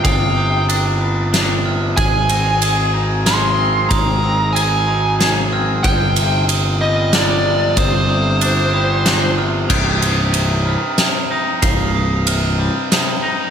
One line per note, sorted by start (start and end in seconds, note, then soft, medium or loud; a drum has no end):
0.00 0.36 C3 soft
0.00 0.69 G3 medium
0.00 0.68 D4 medium
0.00 1.95 D4 soft
0.00 5.80 C5 soft
0.00 1.95 F5 medium
0.04 1.94 G1 medium
0.04 1.65 C2 medium
0.04 0.66 G5 medium
0.04 0.36 D#6 medium
0.04 kick medium
0.04 ride soft
0.37 1.64 C3 medium
0.37 1.00 D#6 medium
0.69 1.32 D4 medium
0.69 ride soft
1.01 1.98 G3 medium
1.01 1.66 D#6 soft
1.33 1.97 D4 medium
1.33 snare medium
1.33 ride soft
1.65 1.98 C3 medium
1.65 1.98 F6 medium
1.97 3.87 G#1 medium
1.97 3.58 G#2 medium
1.97 5.80 G#4 soft
1.97 2.90 G#5 medium
1.97 5.80 G#5 medium
1.97 2.62 G#6 medium
1.97 kick medium
1.97 ride soft
2.29 3.58 C4 medium
2.29 ride soft
2.61 3.25 G#4 medium
2.61 3.26 D#6 medium
2.61 ride medium
2.94 4.87 D#4 medium
3.26 4.54 G#4 medium
3.26 3.89 C6 medium
3.26 3.91 F6 medium
3.26 snare medium
3.26 ride medium
3.59 4.23 C4 medium
3.89 5.80 G#1 medium
3.89 5.52 G#2 medium
3.89 4.56 A#5 medium
3.89 4.23 D#6 medium
3.89 kick medium
3.89 ride soft
4.23 5.52 C4 medium
4.23 4.87 D#6 medium
4.53 5.18 G#4 medium
4.53 5.46 G#5 medium
4.53 ride soft
4.87 7.16 D#4 medium
4.87 5.52 D#6 medium
5.19 5.84 G#4 medium
5.19 snare medium
5.19 ride soft
5.52 6.80 C4 medium
5.52 5.84 F6 medium
5.83 7.73 G1 medium
5.83 7.44 C2 medium
5.83 9.66 C5 medium
5.83 6.44 G5 medium
5.83 9.66 G5 medium
5.83 6.49 G6 medium
5.83 kick medium
5.83 ride soft
6.16 7.44 C3 medium
6.16 ride soft
6.49 7.13 D#6 medium
6.49 ride soft
6.81 8.41 G3 medium
6.81 7.14 D#5 medium
7.13 8.40 D4 medium
7.13 7.78 D5 medium
7.13 7.77 F6 medium
7.13 snare medium
7.13 ride medium
7.45 8.08 C3 medium
7.77 9.66 G1 medium
7.77 9.38 C2 medium
7.77 9.34 C5 medium
7.77 8.08 D#6 medium
7.77 kick medium
7.77 ride soft
8.09 9.36 C3 medium
8.09 8.72 D#6 medium
8.41 9.04 D4 medium
8.41 ride medium
8.73 9.70 G3 medium
8.73 9.38 D#6 medium
9.05 9.70 D4 medium
9.05 snare medium
9.05 ride medium
9.38 9.70 C3 medium
9.38 9.70 F6 medium
9.69 10.76 C1 medium
9.69 11.30 C2 medium
9.69 13.50 D#4 medium
9.69 13.50 G4 soft
9.69 13.50 C5 soft
9.69 11.61 G5 medium
9.69 10.02 D#6 medium
9.69 kick medium
9.69 crash medium
10.02 11.63 G2 medium
10.02 10.67 D#6 medium
10.02 ride soft
10.34 10.97 C3 medium
10.34 ride soft
10.66 12.27 G3 medium
10.66 11.31 F6 medium
10.98 12.25 C3 medium
10.98 snare medium
10.98 ride medium
11.31 12.91 D#4 medium
11.31 11.95 D#6 medium
11.62 12.68 C1 medium
11.62 13.23 C2 medium
11.62 13.50 F5 medium
11.62 kick medium
11.62 ride medium
11.95 13.50 G2 medium
11.95 12.27 D#6 medium
12.26 12.90 C3 medium
12.26 12.91 F6 medium
12.26 ride medium
12.58 13.50 G3 medium
12.91 13.50 C3 medium
12.91 13.50 D#6 medium
12.91 snare medium
12.91 ride medium
13.23 13.50 D#4 medium